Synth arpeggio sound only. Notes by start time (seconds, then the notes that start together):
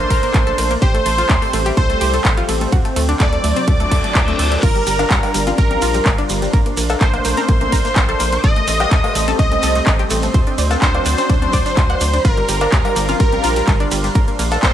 0.11 A#4
0.23 A#3
0.34 A#3
0.47 A4
0.58 A#3
0.71 A#3
0.82 G4
0.95 A3
1.06 A3
1.18 F4
1.30 A3
1.42 A3
1.53 A3
1.66 G4
1.77 A3
1.90 A3
2.01 G4
2.14 A3
2.25 A3
2.37 F4
2.49 A3
2.61 A3
2.72 F#4
2.85 A3
2.96 A3
3.09 D4
3.20 A3
3.33 A3
3.44 A3
3.56 C4
3.68 A3
3.80 A3
3.91 A3
4.04 A3
4.15 A3
4.28 A3
4.39 A3
4.52 A3
4.63 F4
4.76 G3
4.87 G3
4.99 D4
5.11 G3
5.23 G3
5.34 G3
5.47 F4
5.58 G3
5.71 G3
5.82 F4
5.95 G3
6.06 G3
6.18 D4
6.30 G3
6.42 G3
6.54 A#4
6.66 A#3
6.77 A#3
6.90 A4
7.01 A#3
7.14 A#3
7.25 A#3
7.37 A#4
7.49 A#3
7.61 A#3
7.72 A#4
7.85 A#3
7.96 A#3
8.09 A4
8.20 A#3
8.33 A#3
8.44 A4
8.57 A3
8.68 A3
8.80 G4
8.92 A3
9.04 A3
9.15 A3
9.28 A4
9.39 A3
9.52 A3
9.63 A4
9.76 A3
9.87 A3
9.99 G4
10.11 A3
10.23 A3
10.34 C5
10.47 D4
10.58 D4
10.71 A4
10.82 D4
10.95 D4
11.06 D4
11.18 C5
11.30 D4
11.42 D4
11.53 D5
11.66 D4
11.77 D4
11.90 F#5
12.01 D4
12.14 D4
12.25 F4
12.37 G3
12.49 G3
12.61 D4
12.72 G3
12.85 G3
12.96 G3
13.09 F4
13.20 G3
13.33 G3
13.44 F4
13.56 G3
13.68 G3
13.80 D4
13.92 G3
14.04 G3
14.15 A#4
14.28 A#3
14.39 A#3
14.52 A4
14.63 A#3